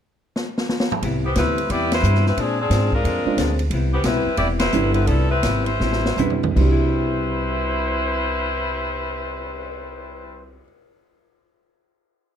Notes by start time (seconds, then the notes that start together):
0.36 snare
0.58 snare
0.69 snare
0.80 snare
0.92 mid tom
1.02 C2 C3 G3 B3 E4, kick, ride
1.25 E3 B3 C4 G4
1.35 D2 C3 G3 B3 C4 E4 B4, kick, snare, hi-hat pedal, ride
1.58 ride
1.70 E2 C3 G3 B3 E4 G4 D5, kick, ride
1.92 G3 E4 B4 C5, snare, ride
2.03 G2 C3 G3 B3 E4, hi-hat pedal
2.15 snare
2.26 G3 C4 E4 B4, snare
2.36 A#2 F3 G#3 C4 D4 G#4, kick, ride
2.60 F3 C4 D4 G#4
2.70 G#2 A#2 G#3 C4 D4, kick, snare, hi-hat pedal, ride
2.92 G#3 D4 F4 A#4, kick
3.04 F2 A#2 G#3 C4 D4, kick, ride
3.25 G#3 C4 D4 F4, muted upright bass stroke
3.37 D2 A#2 G#3 C4 D4, kick, snare, hi-hat pedal, ride
3.59 ride
3.70 C2 C3 G3 B3 E4, kick, ride
3.93 E3 B3 C4 G4
4.04 B1 C3 G3 B3 C4 E4 B4, kick, snare, hi-hat pedal, ride
4.26 muted upright bass stroke
4.37 E1 C3 G3 B3 E4 G4 D5, kick, ride
4.41 E4
4.59 G3 E4 B4 C5, snare, ride
4.72 G1 C3 G3 B3 D4 E4, hi-hat pedal
4.94 G3 C4 E4 B4, ride
5.06 C2 C3 F3 G3 B3 D4 E4 A4, kick, ride
5.29 G3 C4 E4 B4
5.43 G#1 C3 G3 B3 E4, kick, snare, hi-hat pedal, ride
5.64 G3 E4 B4 C5, ride
5.80 A1 C3 G3 B3 E4, snare
5.92 snare
6.05 snare
6.17 B1 C3 G3 B3 D4 E4, floor tom, hi-hat pedal
6.30 floor tom
6.43 floor tom
6.51 C3
6.56 C2 B2 C3 G3 D4 E4 B4 C5, kick, crash
6.71 E4
6.82 cymbal swell